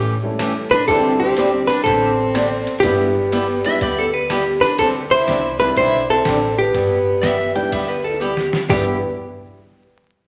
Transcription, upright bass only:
Already playing: A2
0.88 D2
1.86 A1
2.83 G1
3.81 D2
4.79 D2
5.27 C2
5.77 B1
6.25 A1
6.74 G1
7.72 D2
8.69 G1

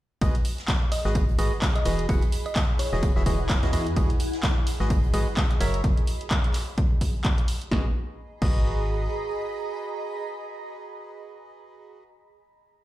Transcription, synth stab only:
0.21 G#3 F#4 G#4 B4 D#5
1.05 G#3 F#4 G#4 B4 D#5
1.39 G#3 F#4 G#4 B4 D#5
1.85 E3 F#4 G#4 B4 D#5
2.09 E3 E4 F#4 G#4 F#5
2.93 E3 E4 F#4 G#4 D#5
3.16 E3 E4 F#4 G#4 E5
3.26 E3 E4 F#4 G#4 D#5
3.63 E3 E4 F#4 G#4 D#5
3.73 E4 F#4 G#4 D#5
3.96 G#3 F#4 G#4 B4 D#5
4.80 G#3 F#4 G#4 B4 D#5
5.14 G#3 F#4 G#4 B4 D#5
5.61 F#3 F#4 A#4 C#5 E5
7.71 F#4 G#4 B4 D#5
8.42 F#4 G#4 B4 D#5

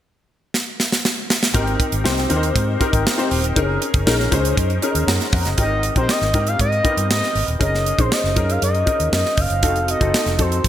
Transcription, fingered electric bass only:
1.54 G#1
1.92 G#1
2.05 C2
2.30 D#2
2.56 G#2
2.93 G#1
3.31 D#1
3.56 F#1
3.94 F#1
4.07 A#1
4.32 C#2
4.57 F#2
4.95 D#2
5.07 F#2
5.33 F2
5.46 F#1
5.58 G#1
5.96 A#1
6.21 G#1
6.34 G#2
6.59 G#2
6.97 G2
7.10 G#2
7.35 G#1
7.48 D#1
7.61 F#1
7.98 A#1
8.24 F#1
8.37 F#2
8.62 F#2
9.00 D#2
9.12 F#2
9.38 F#1
9.50 F#1
9.63 F1
10.01 F#1
10.26 F1
10.39 F2
10.64 F2

